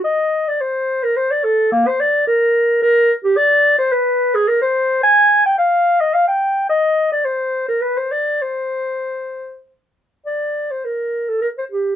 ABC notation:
X:1
M:3/4
L:1/16
Q:1/4=107
K:Bb
V:1 name="Clarinet"
e3 d c3 B c d A2 | B, c d2 B4 B3 G | [K:Cm] d3 c =B3 A _B c3 | a3 g f3 e f g3 |
e3 d c3 B =B c d2 | c8 z4 | [K:Bb] d3 c B3 A B c G2 |]